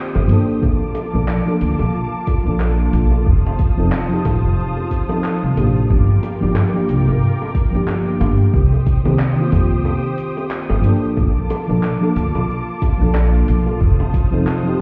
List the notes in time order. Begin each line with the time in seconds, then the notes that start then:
Already playing: D#3 A#3 C4 F4 G4 C5 G5 D#6
0.15 G1, high bongo, cabasa
0.27 F3 A#3 D4, closed hi-hat, cabasa
0.33 A4
0.49 cabasa
0.62 A#1 A#3 F4 A5 D6, kick, high bongo, cabasa
0.82 cabasa
0.95 closed hi-hat, high bongo, cabasa
1.13 A#1 F3 A#3 D4 A4, cabasa
1.28 clap, cabasa
1.46 F3 A#3 D4 A4, high bongo, cabasa
1.61 D2, closed hi-hat, cabasa
1.79 A#1, high bongo, cabasa
1.95 cabasa
2.14 cabasa
2.27 kick, closed hi-hat, high bongo, cabasa
2.44 A#1 F3 A#3 D4, cabasa
2.49 A4
2.60 clap, high bongo, cabasa
2.80 cabasa
2.93 A#1, closed hi-hat, cabasa
3.11 high bongo, cabasa
3.26 F1 C5 A5 D#6, kick, cabasa
3.46 high bongo, cabasa
3.59 kick, closed hi-hat, cabasa
3.77 F1 F3 C4 D#4 A4, cabasa
3.92 clap, high bongo, cabasa
4.08 F3 C4 D#4, cabasa
4.14 G4
4.25 A1, kick, closed hi-hat, high bongo, cabasa
4.44 F1, cabasa
4.59 cabasa
4.77 high bongo, cabasa
4.91 kick, closed hi-hat, cabasa
5.09 F3 C4 D#4 A4, high bongo, cabasa
5.24 clap, cabasa
5.43 C2, cabasa
5.54 A1 F3 A#3 D4, closed hi-hat, high bongo
5.58 G4, cabasa
5.77 cabasa
5.89 G1 A#4 G5 D6, kick, cabasa
6.10 cabasa
6.23 closed hi-hat, high bongo, cabasa
6.40 G1 F3 A#3 D4 G4, cabasa
6.55 clap, high bongo, cabasa
6.73 F3 A#3 D4 G4, cabasa
6.89 C2, closed hi-hat, cabasa
7.08 G1, high bongo, cabasa
7.23 cabasa
7.42 high bongo, cabasa
7.55 kick, closed hi-hat, cabasa
7.71 G1 F3 A#3
7.75 D4 G4, cabasa
7.87 clap, high bongo, cabasa
8.08 cabasa
8.20 G1, closed hi-hat, high bongo, cabasa
8.41 cabasa
8.53 C2 G4 C5 G5 D#6, kick, cabasa
8.73 high bongo, cabasa
8.87 kick, closed hi-hat, cabasa
9.04 C2 D#3 A#3 C4 G4, high bongo, cabasa
9.19 clap, cabasa
9.35 D#3 A#3
9.39 C4 F4, cabasa
9.52 F2, kick, closed hi-hat, high bongo, cabasa
9.72 C2, cabasa
9.85 high bongo, cabasa
10.05 cabasa
10.18 closed hi-hat, cabasa
10.37 high bongo, cabasa
10.51 clap, cabasa
10.70 G1, high bongo, cabasa
10.81 F3 A#3, closed hi-hat, cabasa
10.85 D4 A4
11.04 cabasa
11.17 A#1 A#3 F4 A5 D6, kick, high bongo, cabasa
11.37 cabasa
11.50 closed hi-hat, high bongo, cabasa
11.68 A#1 F3 A#3 D4 A4, cabasa
11.83 clap, cabasa
12.01 F3 A#3 D4 A4, high bongo, cabasa
12.16 D2, closed hi-hat, cabasa
12.35 A#1, high bongo, cabasa
12.50 cabasa
12.69 cabasa
12.82 kick, closed hi-hat, high bongo, cabasa
12.98 A#1 F3 A#3 D4
13.02 A4, cabasa
13.14 clap, high bongo, cabasa
13.35 cabasa
13.48 A#1, closed hi-hat, cabasa
13.67 high bongo, cabasa
13.81 F1 C5 A5 D#6, kick, cabasa
14.00 high bongo, cabasa
14.14 kick, closed hi-hat, cabasa
14.31 F1 F3 C4 D#4 A4, cabasa
14.47 clap, high bongo, cabasa
14.63 F3 C4 D#4
14.67 G4, cabasa